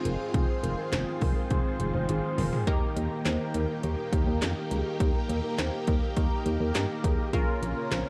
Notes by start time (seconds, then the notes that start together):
Already playing: D#3 G#3 C4 F4 G#4 C5
0.05 F1 A#4, closed hi-hat
0.20 G#4
0.34 F1 G#4, kick, closed hi-hat
0.63 F1 A#4, closed hi-hat
0.78 A#4
0.92 F1 C5, snare, clap, closed hi-hat
1.21 F1 A#4, kick, open hi-hat
1.36 A#4
1.50 F1 G#4, kick, closed hi-hat
1.80 F1 G#4, closed hi-hat
1.94 F1 C5
2.09 G#1 G#4, closed hi-hat, high tom
2.38 F1 A#4, mid tom, open hi-hat
2.53 G#4, floor tom
2.67 D#2 A#3 D#4 G4 A#4, kick, closed hi-hat
2.96 D#2 A#4, closed hi-hat
3.11 A#4
3.25 D#2 C5, snare, clap, closed hi-hat
3.54 D#2 A#4, closed hi-hat
3.83 D#2 G4, closed hi-hat
4.13 D#2 G4, kick, closed hi-hat
4.27 D#2 A#4
4.42 F2 G4, snare, clap, closed hi-hat
4.71 C#2 G#4, closed hi-hat
4.86 G4
5.00 D#2 G4, kick, closed hi-hat
5.29 D#2 A#4, closed hi-hat
5.44 A#4
5.58 D#2 C5, snare, clap, closed hi-hat
5.87 D#2 A#4, kick, closed hi-hat
6.02 A#4
6.16 D#2 G4, kick, closed hi-hat
6.46 D#2 G4, closed hi-hat
6.60 D#2 A#4
6.75 G2 G4, snare, clap, closed hi-hat
7.04 D#2 G#4, kick, closed hi-hat
7.19 G4
7.33 A#1 C#3 A#3 C#4 F4 G#4 A#4, kick, closed hi-hat
7.62 A#1 A#4, closed hi-hat
7.77 A#4
7.91 A#1 C5, snare, clap, closed hi-hat